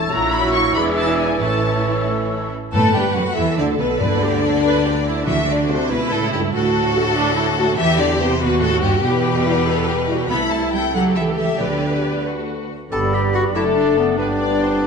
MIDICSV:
0, 0, Header, 1, 12, 480
1, 0, Start_track
1, 0, Key_signature, 1, "major"
1, 0, Tempo, 435414
1, 122, Time_signature, 6, 3, 24, 8
1, 3485, Tempo, 420168
1, 11645, Tempo, 434783
1, 14525, Tempo, 424628
1, 16736, End_track
2, 0, Start_track
2, 0, Title_t, "Flute"
2, 0, Program_c, 0, 73
2, 0, Note_on_c, 0, 88, 52
2, 1544, Note_off_c, 0, 88, 0
2, 1554, Note_on_c, 0, 88, 49
2, 2749, Note_off_c, 0, 88, 0
2, 14536, Note_on_c, 0, 83, 64
2, 15253, Note_on_c, 0, 81, 62
2, 15270, Note_off_c, 0, 83, 0
2, 15965, Note_off_c, 0, 81, 0
2, 15971, Note_on_c, 0, 79, 57
2, 16736, Note_off_c, 0, 79, 0
2, 16736, End_track
3, 0, Start_track
3, 0, Title_t, "Oboe"
3, 0, Program_c, 1, 68
3, 0, Note_on_c, 1, 73, 50
3, 825, Note_on_c, 1, 74, 66
3, 841, Note_off_c, 1, 73, 0
3, 1551, Note_off_c, 1, 74, 0
3, 1560, Note_on_c, 1, 73, 51
3, 2752, Note_off_c, 1, 73, 0
3, 14528, Note_on_c, 1, 74, 59
3, 15205, Note_off_c, 1, 74, 0
3, 15244, Note_on_c, 1, 74, 65
3, 15949, Note_off_c, 1, 74, 0
3, 15961, Note_on_c, 1, 74, 60
3, 16736, Note_off_c, 1, 74, 0
3, 16736, End_track
4, 0, Start_track
4, 0, Title_t, "Violin section"
4, 0, Program_c, 2, 48
4, 120, Note_on_c, 2, 66, 63
4, 128, Note_on_c, 2, 73, 63
4, 785, Note_off_c, 2, 66, 0
4, 789, Note_off_c, 2, 73, 0
4, 843, Note_on_c, 2, 68, 70
4, 846, Note_on_c, 2, 74, 70
4, 1547, Note_off_c, 2, 74, 0
4, 1549, Note_on_c, 2, 69, 49
4, 1554, Note_on_c, 2, 73, 58
4, 1560, Note_off_c, 2, 68, 0
4, 2761, Note_off_c, 2, 69, 0
4, 2788, Note_off_c, 2, 73, 0
4, 3009, Note_on_c, 2, 81, 87
4, 3231, Note_off_c, 2, 81, 0
4, 3250, Note_on_c, 2, 79, 76
4, 3479, Note_on_c, 2, 78, 88
4, 3484, Note_off_c, 2, 79, 0
4, 3723, Note_off_c, 2, 78, 0
4, 3725, Note_on_c, 2, 76, 97
4, 3967, Note_off_c, 2, 76, 0
4, 3970, Note_on_c, 2, 74, 84
4, 4061, Note_off_c, 2, 74, 0
4, 4211, Note_on_c, 2, 71, 88
4, 4449, Note_off_c, 2, 71, 0
4, 4451, Note_on_c, 2, 74, 93
4, 5900, Note_off_c, 2, 74, 0
4, 5901, Note_on_c, 2, 76, 107
4, 6137, Note_off_c, 2, 76, 0
4, 6137, Note_on_c, 2, 74, 85
4, 6381, Note_off_c, 2, 74, 0
4, 6384, Note_on_c, 2, 72, 98
4, 6622, Note_on_c, 2, 71, 112
4, 6625, Note_off_c, 2, 72, 0
4, 6860, Note_on_c, 2, 69, 101
4, 6864, Note_off_c, 2, 71, 0
4, 7098, Note_on_c, 2, 67, 92
4, 7102, Note_off_c, 2, 69, 0
4, 7189, Note_off_c, 2, 67, 0
4, 7338, Note_on_c, 2, 69, 114
4, 8740, Note_off_c, 2, 69, 0
4, 8753, Note_on_c, 2, 76, 121
4, 8995, Note_off_c, 2, 76, 0
4, 9000, Note_on_c, 2, 74, 109
4, 9239, Note_on_c, 2, 72, 106
4, 9242, Note_off_c, 2, 74, 0
4, 9461, Note_on_c, 2, 71, 113
4, 9480, Note_off_c, 2, 72, 0
4, 9710, Note_off_c, 2, 71, 0
4, 9718, Note_on_c, 2, 69, 106
4, 9953, Note_off_c, 2, 69, 0
4, 9954, Note_on_c, 2, 67, 93
4, 10191, Note_off_c, 2, 67, 0
4, 10195, Note_on_c, 2, 71, 105
4, 11635, Note_on_c, 2, 83, 98
4, 11642, Note_off_c, 2, 71, 0
4, 11870, Note_off_c, 2, 83, 0
4, 11872, Note_on_c, 2, 81, 82
4, 12108, Note_on_c, 2, 79, 90
4, 12113, Note_off_c, 2, 81, 0
4, 12347, Note_off_c, 2, 79, 0
4, 12356, Note_on_c, 2, 78, 95
4, 12445, Note_off_c, 2, 78, 0
4, 12588, Note_on_c, 2, 76, 81
4, 12676, Note_off_c, 2, 76, 0
4, 12824, Note_on_c, 2, 76, 78
4, 13065, Note_off_c, 2, 76, 0
4, 13070, Note_on_c, 2, 74, 70
4, 13799, Note_off_c, 2, 74, 0
4, 14530, Note_on_c, 2, 81, 88
4, 14621, Note_off_c, 2, 81, 0
4, 14774, Note_on_c, 2, 79, 62
4, 14864, Note_off_c, 2, 79, 0
4, 15008, Note_on_c, 2, 78, 74
4, 15098, Note_off_c, 2, 78, 0
4, 15249, Note_on_c, 2, 76, 86
4, 15339, Note_off_c, 2, 76, 0
4, 15490, Note_on_c, 2, 74, 71
4, 15723, Note_off_c, 2, 74, 0
4, 15724, Note_on_c, 2, 71, 69
4, 15814, Note_off_c, 2, 71, 0
4, 15963, Note_on_c, 2, 74, 82
4, 16736, Note_off_c, 2, 74, 0
4, 16736, End_track
5, 0, Start_track
5, 0, Title_t, "Violin section"
5, 0, Program_c, 3, 48
5, 0, Note_on_c, 3, 81, 85
5, 113, Note_off_c, 3, 81, 0
5, 121, Note_on_c, 3, 82, 98
5, 354, Note_on_c, 3, 83, 97
5, 357, Note_off_c, 3, 82, 0
5, 577, Note_on_c, 3, 85, 93
5, 591, Note_off_c, 3, 83, 0
5, 817, Note_off_c, 3, 85, 0
5, 820, Note_on_c, 3, 83, 100
5, 908, Note_off_c, 3, 83, 0
5, 1065, Note_on_c, 3, 81, 87
5, 1296, Note_on_c, 3, 80, 71
5, 1303, Note_off_c, 3, 81, 0
5, 1541, Note_off_c, 3, 80, 0
5, 1542, Note_on_c, 3, 81, 74
5, 2266, Note_off_c, 3, 81, 0
5, 3010, Note_on_c, 3, 69, 92
5, 3231, Note_off_c, 3, 69, 0
5, 3245, Note_on_c, 3, 67, 72
5, 3476, Note_on_c, 3, 66, 78
5, 3482, Note_off_c, 3, 67, 0
5, 3722, Note_off_c, 3, 66, 0
5, 3724, Note_on_c, 3, 64, 82
5, 3816, Note_off_c, 3, 64, 0
5, 3961, Note_on_c, 3, 62, 77
5, 4052, Note_off_c, 3, 62, 0
5, 4201, Note_on_c, 3, 59, 72
5, 4292, Note_off_c, 3, 59, 0
5, 4448, Note_on_c, 3, 62, 93
5, 5869, Note_off_c, 3, 62, 0
5, 5894, Note_on_c, 3, 66, 67
5, 6576, Note_off_c, 3, 66, 0
5, 6627, Note_on_c, 3, 64, 77
5, 7298, Note_off_c, 3, 64, 0
5, 7346, Note_on_c, 3, 66, 87
5, 8727, Note_off_c, 3, 66, 0
5, 8770, Note_on_c, 3, 67, 77
5, 9438, Note_off_c, 3, 67, 0
5, 9484, Note_on_c, 3, 66, 85
5, 10153, Note_off_c, 3, 66, 0
5, 10188, Note_on_c, 3, 67, 75
5, 11593, Note_off_c, 3, 67, 0
5, 11636, Note_on_c, 3, 69, 63
5, 12308, Note_off_c, 3, 69, 0
5, 12354, Note_on_c, 3, 67, 66
5, 13756, Note_off_c, 3, 67, 0
5, 13806, Note_on_c, 3, 66, 53
5, 14266, Note_off_c, 3, 66, 0
5, 15251, Note_on_c, 3, 69, 72
5, 15921, Note_off_c, 3, 69, 0
5, 15969, Note_on_c, 3, 71, 77
5, 16059, Note_off_c, 3, 71, 0
5, 16206, Note_on_c, 3, 74, 70
5, 16440, Note_off_c, 3, 74, 0
5, 16443, Note_on_c, 3, 72, 71
5, 16684, Note_off_c, 3, 72, 0
5, 16686, Note_on_c, 3, 71, 73
5, 16736, Note_off_c, 3, 71, 0
5, 16736, End_track
6, 0, Start_track
6, 0, Title_t, "Clarinet"
6, 0, Program_c, 4, 71
6, 131, Note_on_c, 4, 66, 62
6, 848, Note_on_c, 4, 68, 62
6, 865, Note_off_c, 4, 66, 0
6, 1562, Note_off_c, 4, 68, 0
6, 1572, Note_on_c, 4, 69, 46
6, 2758, Note_off_c, 4, 69, 0
6, 14533, Note_on_c, 4, 69, 93
6, 14780, Note_on_c, 4, 67, 86
6, 14797, Note_off_c, 4, 69, 0
6, 15013, Note_off_c, 4, 67, 0
6, 15019, Note_on_c, 4, 66, 92
6, 15125, Note_off_c, 4, 66, 0
6, 15251, Note_on_c, 4, 64, 81
6, 15357, Note_off_c, 4, 64, 0
6, 15485, Note_on_c, 4, 62, 82
6, 15720, Note_off_c, 4, 62, 0
6, 15729, Note_on_c, 4, 59, 75
6, 15948, Note_off_c, 4, 59, 0
6, 15955, Note_on_c, 4, 62, 88
6, 16736, Note_off_c, 4, 62, 0
6, 16736, End_track
7, 0, Start_track
7, 0, Title_t, "Viola section"
7, 0, Program_c, 5, 48
7, 119, Note_on_c, 5, 54, 65
7, 121, Note_on_c, 5, 64, 68
7, 784, Note_off_c, 5, 54, 0
7, 785, Note_off_c, 5, 64, 0
7, 815, Note_on_c, 5, 64, 77
7, 817, Note_on_c, 5, 52, 69
7, 1524, Note_off_c, 5, 64, 0
7, 1525, Note_off_c, 5, 52, 0
7, 1537, Note_on_c, 5, 64, 53
7, 1538, Note_on_c, 5, 52, 50
7, 2755, Note_off_c, 5, 64, 0
7, 2756, Note_off_c, 5, 52, 0
7, 3004, Note_on_c, 5, 71, 75
7, 3675, Note_off_c, 5, 71, 0
7, 3714, Note_on_c, 5, 69, 72
7, 4433, Note_off_c, 5, 69, 0
7, 4444, Note_on_c, 5, 71, 80
7, 4690, Note_off_c, 5, 71, 0
7, 4696, Note_on_c, 5, 67, 68
7, 4929, Note_on_c, 5, 69, 72
7, 4937, Note_off_c, 5, 67, 0
7, 5174, Note_off_c, 5, 69, 0
7, 5175, Note_on_c, 5, 71, 83
7, 5413, Note_off_c, 5, 71, 0
7, 5415, Note_on_c, 5, 67, 63
7, 5506, Note_off_c, 5, 67, 0
7, 5656, Note_on_c, 5, 64, 71
7, 5894, Note_off_c, 5, 64, 0
7, 5895, Note_on_c, 5, 62, 70
7, 6608, Note_on_c, 5, 64, 86
7, 6622, Note_off_c, 5, 62, 0
7, 7334, Note_off_c, 5, 64, 0
7, 7335, Note_on_c, 5, 66, 86
7, 8038, Note_off_c, 5, 66, 0
7, 8049, Note_on_c, 5, 62, 97
7, 8285, Note_on_c, 5, 64, 75
7, 8286, Note_off_c, 5, 62, 0
7, 8377, Note_off_c, 5, 64, 0
7, 8526, Note_on_c, 5, 66, 90
7, 8762, Note_off_c, 5, 66, 0
7, 8763, Note_on_c, 5, 67, 92
7, 9466, Note_off_c, 5, 67, 0
7, 9483, Note_on_c, 5, 66, 97
7, 10184, Note_off_c, 5, 66, 0
7, 10195, Note_on_c, 5, 67, 87
7, 10917, Note_off_c, 5, 67, 0
7, 10917, Note_on_c, 5, 69, 93
7, 11155, Note_on_c, 5, 67, 72
7, 11159, Note_off_c, 5, 69, 0
7, 11246, Note_off_c, 5, 67, 0
7, 11393, Note_on_c, 5, 66, 73
7, 11635, Note_off_c, 5, 66, 0
7, 11638, Note_on_c, 5, 64, 83
7, 12353, Note_off_c, 5, 64, 0
7, 12353, Note_on_c, 5, 69, 74
7, 13059, Note_off_c, 5, 69, 0
7, 13070, Note_on_c, 5, 71, 61
7, 14160, Note_off_c, 5, 71, 0
7, 14524, Note_on_c, 5, 62, 59
7, 14525, Note_on_c, 5, 59, 58
7, 15203, Note_off_c, 5, 59, 0
7, 15252, Note_on_c, 5, 57, 62
7, 15922, Note_off_c, 5, 57, 0
7, 15965, Note_on_c, 5, 59, 66
7, 16736, Note_off_c, 5, 59, 0
7, 16736, Note_off_c, 5, 62, 0
7, 16736, End_track
8, 0, Start_track
8, 0, Title_t, "French horn section"
8, 0, Program_c, 6, 60
8, 128, Note_on_c, 6, 64, 66
8, 130, Note_on_c, 6, 54, 71
8, 789, Note_off_c, 6, 64, 0
8, 790, Note_off_c, 6, 54, 0
8, 831, Note_on_c, 6, 56, 59
8, 836, Note_on_c, 6, 62, 63
8, 1541, Note_on_c, 6, 57, 52
8, 1542, Note_off_c, 6, 62, 0
8, 1542, Note_on_c, 6, 61, 56
8, 1554, Note_off_c, 6, 56, 0
8, 2743, Note_off_c, 6, 57, 0
8, 2743, Note_off_c, 6, 61, 0
8, 3014, Note_on_c, 6, 57, 85
8, 3234, Note_off_c, 6, 57, 0
8, 3266, Note_on_c, 6, 55, 65
8, 3368, Note_off_c, 6, 55, 0
8, 3499, Note_on_c, 6, 54, 76
8, 3604, Note_off_c, 6, 54, 0
8, 3727, Note_on_c, 6, 52, 77
8, 3963, Note_off_c, 6, 52, 0
8, 3973, Note_on_c, 6, 50, 75
8, 4213, Note_off_c, 6, 50, 0
8, 4218, Note_on_c, 6, 47, 69
8, 4457, Note_off_c, 6, 47, 0
8, 4465, Note_on_c, 6, 50, 86
8, 5878, Note_off_c, 6, 50, 0
8, 6375, Note_on_c, 6, 57, 86
8, 6382, Note_on_c, 6, 66, 80
8, 6462, Note_off_c, 6, 57, 0
8, 6467, Note_off_c, 6, 66, 0
8, 7111, Note_on_c, 6, 57, 75
8, 7116, Note_on_c, 6, 64, 75
8, 7192, Note_off_c, 6, 57, 0
8, 7195, Note_off_c, 6, 64, 0
8, 7831, Note_on_c, 6, 66, 89
8, 7837, Note_on_c, 6, 57, 85
8, 7910, Note_off_c, 6, 66, 0
8, 7914, Note_off_c, 6, 57, 0
8, 8535, Note_on_c, 6, 57, 83
8, 8539, Note_on_c, 6, 66, 83
8, 8617, Note_off_c, 6, 57, 0
8, 8620, Note_off_c, 6, 66, 0
8, 9225, Note_on_c, 6, 59, 83
8, 9239, Note_on_c, 6, 67, 85
8, 9316, Note_off_c, 6, 59, 0
8, 9325, Note_off_c, 6, 67, 0
8, 9934, Note_on_c, 6, 66, 80
8, 9937, Note_on_c, 6, 59, 75
8, 10026, Note_off_c, 6, 66, 0
8, 10028, Note_off_c, 6, 59, 0
8, 10674, Note_on_c, 6, 55, 75
8, 10677, Note_on_c, 6, 64, 82
8, 10759, Note_off_c, 6, 55, 0
8, 10761, Note_off_c, 6, 64, 0
8, 11382, Note_on_c, 6, 64, 72
8, 11391, Note_on_c, 6, 55, 74
8, 11473, Note_off_c, 6, 64, 0
8, 11479, Note_off_c, 6, 55, 0
8, 11633, Note_on_c, 6, 57, 61
8, 11635, Note_on_c, 6, 64, 67
8, 12307, Note_off_c, 6, 57, 0
8, 12308, Note_off_c, 6, 64, 0
8, 12349, Note_on_c, 6, 67, 55
8, 12351, Note_on_c, 6, 57, 58
8, 13058, Note_off_c, 6, 57, 0
8, 13067, Note_off_c, 6, 67, 0
8, 13075, Note_on_c, 6, 59, 56
8, 13080, Note_on_c, 6, 67, 52
8, 13787, Note_off_c, 6, 59, 0
8, 13790, Note_off_c, 6, 67, 0
8, 13822, Note_on_c, 6, 57, 48
8, 13822, Note_on_c, 6, 66, 47
8, 14285, Note_off_c, 6, 57, 0
8, 14294, Note_off_c, 6, 66, 0
8, 14520, Note_on_c, 6, 59, 60
8, 14524, Note_on_c, 6, 67, 62
8, 15201, Note_off_c, 6, 59, 0
8, 15203, Note_off_c, 6, 67, 0
8, 15242, Note_on_c, 6, 57, 56
8, 15246, Note_on_c, 6, 69, 60
8, 15954, Note_on_c, 6, 59, 60
8, 15954, Note_on_c, 6, 67, 60
8, 15962, Note_off_c, 6, 57, 0
8, 15964, Note_off_c, 6, 69, 0
8, 16736, Note_off_c, 6, 59, 0
8, 16736, Note_off_c, 6, 67, 0
8, 16736, End_track
9, 0, Start_track
9, 0, Title_t, "Bassoon"
9, 0, Program_c, 7, 70
9, 0, Note_on_c, 7, 57, 43
9, 108, Note_on_c, 7, 54, 57
9, 124, Note_off_c, 7, 57, 0
9, 829, Note_on_c, 7, 52, 69
9, 846, Note_off_c, 7, 54, 0
9, 2773, Note_off_c, 7, 52, 0
9, 14536, Note_on_c, 7, 55, 60
9, 15260, Note_on_c, 7, 57, 61
9, 15277, Note_off_c, 7, 55, 0
9, 15959, Note_off_c, 7, 57, 0
9, 15966, Note_on_c, 7, 59, 64
9, 16736, Note_off_c, 7, 59, 0
9, 16736, End_track
10, 0, Start_track
10, 0, Title_t, "Cello section"
10, 0, Program_c, 8, 48
10, 123, Note_on_c, 8, 46, 72
10, 786, Note_off_c, 8, 46, 0
10, 838, Note_on_c, 8, 40, 74
10, 1546, Note_on_c, 8, 45, 62
10, 1557, Note_off_c, 8, 40, 0
10, 2784, Note_off_c, 8, 45, 0
10, 3008, Note_on_c, 8, 57, 93
10, 3230, Note_off_c, 8, 57, 0
10, 3246, Note_on_c, 8, 55, 67
10, 3334, Note_off_c, 8, 55, 0
10, 3480, Note_on_c, 8, 54, 70
10, 3571, Note_off_c, 8, 54, 0
10, 3721, Note_on_c, 8, 52, 86
10, 3960, Note_off_c, 8, 52, 0
10, 3961, Note_on_c, 8, 50, 75
10, 4207, Note_off_c, 8, 50, 0
10, 4212, Note_on_c, 8, 47, 76
10, 4446, Note_on_c, 8, 50, 80
10, 4450, Note_off_c, 8, 47, 0
10, 5897, Note_on_c, 8, 52, 105
10, 5898, Note_off_c, 8, 50, 0
10, 5988, Note_off_c, 8, 52, 0
10, 6138, Note_on_c, 8, 50, 71
10, 6376, Note_off_c, 8, 50, 0
10, 6382, Note_on_c, 8, 48, 81
10, 6624, Note_off_c, 8, 48, 0
10, 6627, Note_on_c, 8, 47, 91
10, 6867, Note_off_c, 8, 47, 0
10, 6869, Note_on_c, 8, 45, 84
10, 7101, Note_off_c, 8, 45, 0
10, 7111, Note_on_c, 8, 43, 88
10, 7345, Note_on_c, 8, 45, 93
10, 7346, Note_off_c, 8, 43, 0
10, 8743, Note_off_c, 8, 45, 0
10, 8765, Note_on_c, 8, 52, 108
10, 9006, Note_off_c, 8, 52, 0
10, 9007, Note_on_c, 8, 50, 98
10, 9243, Note_on_c, 8, 48, 90
10, 9246, Note_off_c, 8, 50, 0
10, 9477, Note_off_c, 8, 48, 0
10, 9478, Note_on_c, 8, 47, 91
10, 9715, Note_on_c, 8, 45, 89
10, 9718, Note_off_c, 8, 47, 0
10, 9945, Note_on_c, 8, 43, 87
10, 9956, Note_off_c, 8, 45, 0
10, 10186, Note_off_c, 8, 43, 0
10, 10188, Note_on_c, 8, 47, 96
10, 11610, Note_off_c, 8, 47, 0
10, 11634, Note_on_c, 8, 59, 103
10, 11723, Note_off_c, 8, 59, 0
10, 11868, Note_on_c, 8, 57, 64
10, 11956, Note_off_c, 8, 57, 0
10, 12110, Note_on_c, 8, 55, 70
10, 12199, Note_off_c, 8, 55, 0
10, 12344, Note_on_c, 8, 54, 77
10, 12584, Note_off_c, 8, 54, 0
10, 12590, Note_on_c, 8, 52, 74
10, 12818, Note_off_c, 8, 52, 0
10, 12831, Note_on_c, 8, 52, 64
10, 12919, Note_off_c, 8, 52, 0
10, 13067, Note_on_c, 8, 50, 64
10, 13783, Note_off_c, 8, 50, 0
10, 14522, Note_on_c, 8, 43, 70
10, 15202, Note_off_c, 8, 43, 0
10, 15248, Note_on_c, 8, 42, 62
10, 15965, Note_off_c, 8, 42, 0
10, 15970, Note_on_c, 8, 43, 67
10, 16736, Note_off_c, 8, 43, 0
10, 16736, End_track
11, 0, Start_track
11, 0, Title_t, "Timpani"
11, 0, Program_c, 10, 47
11, 3016, Note_on_c, 10, 43, 81
11, 3682, Note_off_c, 10, 43, 0
11, 4451, Note_on_c, 10, 43, 85
11, 5131, Note_off_c, 10, 43, 0
11, 5896, Note_on_c, 10, 50, 84
11, 6577, Note_off_c, 10, 50, 0
11, 13081, Note_on_c, 10, 50, 91
11, 13760, Note_off_c, 10, 50, 0
11, 16736, End_track
12, 0, Start_track
12, 0, Title_t, "Double bass section"
12, 0, Program_c, 11, 48
12, 112, Note_on_c, 11, 34, 71
12, 781, Note_off_c, 11, 34, 0
12, 827, Note_on_c, 11, 28, 68
12, 1545, Note_on_c, 11, 33, 57
12, 1552, Note_off_c, 11, 28, 0
12, 2784, Note_off_c, 11, 33, 0
12, 3003, Note_on_c, 11, 45, 92
12, 3091, Note_off_c, 11, 45, 0
12, 3241, Note_on_c, 11, 43, 63
12, 3330, Note_off_c, 11, 43, 0
12, 3478, Note_on_c, 11, 42, 77
12, 3569, Note_off_c, 11, 42, 0
12, 3722, Note_on_c, 11, 40, 72
12, 3814, Note_off_c, 11, 40, 0
12, 3966, Note_on_c, 11, 38, 81
12, 4205, Note_off_c, 11, 38, 0
12, 4209, Note_on_c, 11, 35, 73
12, 4448, Note_off_c, 11, 35, 0
12, 4449, Note_on_c, 11, 38, 85
12, 5870, Note_off_c, 11, 38, 0
12, 5897, Note_on_c, 11, 38, 74
12, 6577, Note_off_c, 11, 38, 0
12, 6618, Note_on_c, 11, 37, 77
12, 7337, Note_on_c, 11, 38, 77
12, 7339, Note_off_c, 11, 37, 0
12, 8739, Note_off_c, 11, 38, 0
12, 8761, Note_on_c, 11, 40, 88
12, 9465, Note_off_c, 11, 40, 0
12, 9473, Note_on_c, 11, 39, 87
12, 10185, Note_on_c, 11, 40, 89
12, 10193, Note_off_c, 11, 39, 0
12, 11609, Note_off_c, 11, 40, 0
12, 11642, Note_on_c, 11, 36, 73
12, 12353, Note_on_c, 11, 37, 65
12, 12355, Note_off_c, 11, 36, 0
12, 13072, Note_on_c, 11, 38, 60
12, 13073, Note_off_c, 11, 37, 0
12, 14272, Note_off_c, 11, 38, 0
12, 14521, Note_on_c, 11, 31, 63
12, 15201, Note_off_c, 11, 31, 0
12, 15252, Note_on_c, 11, 30, 60
12, 15967, Note_off_c, 11, 30, 0
12, 15967, Note_on_c, 11, 31, 69
12, 16736, Note_off_c, 11, 31, 0
12, 16736, End_track
0, 0, End_of_file